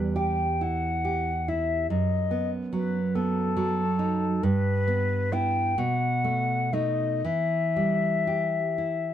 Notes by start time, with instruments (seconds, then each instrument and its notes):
Already playing: nylon-string guitar E2 G3, flute B4
0.16 nylon-string guitar G4, flute G5
0.61 nylon-string guitar E4, flute F#5
1.05 nylon-string guitar G4
1.48 nylon-string guitar E4, flute E5
1.90 nylon-string guitar F#2, flute D#5
2.31 nylon-string guitar B3
2.73 nylon-string guitar F#3, flute B4
3.15 nylon-string guitar B3, flute A4
3.57 nylon-string guitar F#3
3.99 nylon-string guitar D#4
4.43 nylon-string guitar G2, flute B4
4.88 nylon-string guitar B3
5.32 nylon-string guitar B3 E4, flute G5
5.78 nylon-string guitar B2, flute F#5
6.24 nylon-string guitar A3
6.73 nylon-string guitar A3 D#4, flute D#5
7.25 nylon-string guitar E3, flute E5
7.76 nylon-string guitar G3
8.27 nylon-string guitar G4
8.78 nylon-string guitar E4